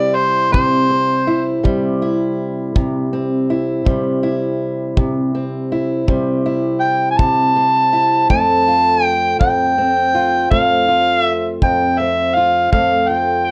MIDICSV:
0, 0, Header, 1, 4, 480
1, 0, Start_track
1, 0, Key_signature, 0, "major"
1, 0, Tempo, 738007
1, 2512, Time_signature, 12, 3, 24, 8
1, 8787, End_track
2, 0, Start_track
2, 0, Title_t, "Harmonica"
2, 0, Program_c, 0, 22
2, 0, Note_on_c, 0, 74, 114
2, 103, Note_on_c, 0, 72, 90
2, 112, Note_off_c, 0, 74, 0
2, 336, Note_off_c, 0, 72, 0
2, 340, Note_on_c, 0, 72, 89
2, 1040, Note_off_c, 0, 72, 0
2, 4423, Note_on_c, 0, 79, 89
2, 4609, Note_off_c, 0, 79, 0
2, 4622, Note_on_c, 0, 80, 69
2, 4668, Note_on_c, 0, 81, 101
2, 4677, Note_off_c, 0, 80, 0
2, 5391, Note_off_c, 0, 81, 0
2, 5400, Note_on_c, 0, 81, 117
2, 5881, Note_off_c, 0, 81, 0
2, 5881, Note_on_c, 0, 79, 117
2, 6091, Note_off_c, 0, 79, 0
2, 6111, Note_on_c, 0, 79, 107
2, 6807, Note_off_c, 0, 79, 0
2, 6834, Note_on_c, 0, 77, 95
2, 7296, Note_off_c, 0, 77, 0
2, 7296, Note_on_c, 0, 76, 95
2, 7528, Note_off_c, 0, 76, 0
2, 7564, Note_on_c, 0, 79, 87
2, 7797, Note_on_c, 0, 76, 81
2, 7806, Note_off_c, 0, 79, 0
2, 8033, Note_on_c, 0, 77, 82
2, 8042, Note_off_c, 0, 76, 0
2, 8270, Note_off_c, 0, 77, 0
2, 8274, Note_on_c, 0, 77, 92
2, 8514, Note_on_c, 0, 79, 80
2, 8524, Note_off_c, 0, 77, 0
2, 8748, Note_on_c, 0, 77, 81
2, 8758, Note_off_c, 0, 79, 0
2, 8787, Note_off_c, 0, 77, 0
2, 8787, End_track
3, 0, Start_track
3, 0, Title_t, "Steel-string acoustic guitar"
3, 0, Program_c, 1, 25
3, 0, Note_on_c, 1, 48, 64
3, 0, Note_on_c, 1, 55, 53
3, 0, Note_on_c, 1, 60, 53
3, 0, Note_on_c, 1, 64, 57
3, 336, Note_off_c, 1, 48, 0
3, 338, Note_on_c, 1, 48, 73
3, 585, Note_off_c, 1, 60, 0
3, 587, Note_on_c, 1, 60, 51
3, 825, Note_off_c, 1, 64, 0
3, 828, Note_on_c, 1, 64, 63
3, 1060, Note_off_c, 1, 48, 0
3, 1062, Note_on_c, 1, 48, 71
3, 1063, Note_off_c, 1, 55, 0
3, 1065, Note_on_c, 1, 55, 60
3, 1306, Note_off_c, 1, 64, 0
3, 1314, Note_on_c, 1, 64, 60
3, 1783, Note_off_c, 1, 48, 0
3, 1791, Note_on_c, 1, 48, 68
3, 2032, Note_off_c, 1, 60, 0
3, 2035, Note_on_c, 1, 60, 56
3, 2269, Note_off_c, 1, 64, 0
3, 2277, Note_on_c, 1, 64, 58
3, 2483, Note_off_c, 1, 48, 0
3, 2504, Note_off_c, 1, 55, 0
3, 2505, Note_on_c, 1, 48, 66
3, 2512, Note_on_c, 1, 55, 51
3, 2744, Note_off_c, 1, 64, 0
3, 2752, Note_on_c, 1, 64, 58
3, 3224, Note_off_c, 1, 48, 0
3, 3232, Note_on_c, 1, 48, 67
3, 3475, Note_off_c, 1, 60, 0
3, 3478, Note_on_c, 1, 60, 53
3, 3713, Note_off_c, 1, 64, 0
3, 3720, Note_on_c, 1, 64, 58
3, 3944, Note_off_c, 1, 48, 0
3, 3947, Note_off_c, 1, 55, 0
3, 3952, Note_on_c, 1, 48, 70
3, 3954, Note_on_c, 1, 55, 58
3, 4192, Note_off_c, 1, 64, 0
3, 4200, Note_on_c, 1, 64, 58
3, 4666, Note_off_c, 1, 48, 0
3, 4674, Note_on_c, 1, 48, 66
3, 4916, Note_off_c, 1, 60, 0
3, 4918, Note_on_c, 1, 60, 49
3, 5150, Note_off_c, 1, 64, 0
3, 5157, Note_on_c, 1, 64, 57
3, 5365, Note_off_c, 1, 48, 0
3, 5395, Note_off_c, 1, 55, 0
3, 5395, Note_on_c, 1, 41, 66
3, 5396, Note_off_c, 1, 64, 0
3, 5399, Note_on_c, 1, 57, 54
3, 5645, Note_on_c, 1, 65, 58
3, 6105, Note_off_c, 1, 41, 0
3, 6107, Note_on_c, 1, 41, 66
3, 6359, Note_off_c, 1, 60, 0
3, 6362, Note_on_c, 1, 60, 52
3, 6597, Note_off_c, 1, 65, 0
3, 6600, Note_on_c, 1, 65, 63
3, 6830, Note_off_c, 1, 41, 0
3, 6833, Note_on_c, 1, 41, 69
3, 6835, Note_off_c, 1, 57, 0
3, 6837, Note_on_c, 1, 57, 59
3, 7071, Note_off_c, 1, 65, 0
3, 7079, Note_on_c, 1, 65, 59
3, 7550, Note_off_c, 1, 41, 0
3, 7558, Note_on_c, 1, 41, 64
3, 7802, Note_off_c, 1, 60, 0
3, 7805, Note_on_c, 1, 60, 53
3, 8037, Note_off_c, 1, 65, 0
3, 8045, Note_on_c, 1, 65, 59
3, 8247, Note_off_c, 1, 41, 0
3, 8247, Note_off_c, 1, 57, 0
3, 8251, Note_off_c, 1, 65, 0
3, 8275, Note_on_c, 1, 41, 63
3, 8278, Note_on_c, 1, 57, 58
3, 8518, Note_on_c, 1, 65, 58
3, 8787, Note_off_c, 1, 41, 0
3, 8787, Note_off_c, 1, 57, 0
3, 8787, Note_off_c, 1, 60, 0
3, 8787, Note_off_c, 1, 65, 0
3, 8787, End_track
4, 0, Start_track
4, 0, Title_t, "Drums"
4, 352, Note_on_c, 9, 36, 62
4, 417, Note_off_c, 9, 36, 0
4, 1074, Note_on_c, 9, 36, 59
4, 1139, Note_off_c, 9, 36, 0
4, 1794, Note_on_c, 9, 36, 61
4, 1859, Note_off_c, 9, 36, 0
4, 2513, Note_on_c, 9, 36, 61
4, 2579, Note_off_c, 9, 36, 0
4, 3234, Note_on_c, 9, 36, 62
4, 3299, Note_off_c, 9, 36, 0
4, 3956, Note_on_c, 9, 36, 56
4, 4021, Note_off_c, 9, 36, 0
4, 4677, Note_on_c, 9, 36, 66
4, 4742, Note_off_c, 9, 36, 0
4, 5399, Note_on_c, 9, 36, 65
4, 5464, Note_off_c, 9, 36, 0
4, 6119, Note_on_c, 9, 36, 61
4, 6184, Note_off_c, 9, 36, 0
4, 6839, Note_on_c, 9, 36, 61
4, 6904, Note_off_c, 9, 36, 0
4, 7557, Note_on_c, 9, 36, 62
4, 7622, Note_off_c, 9, 36, 0
4, 8278, Note_on_c, 9, 36, 67
4, 8343, Note_off_c, 9, 36, 0
4, 8787, End_track
0, 0, End_of_file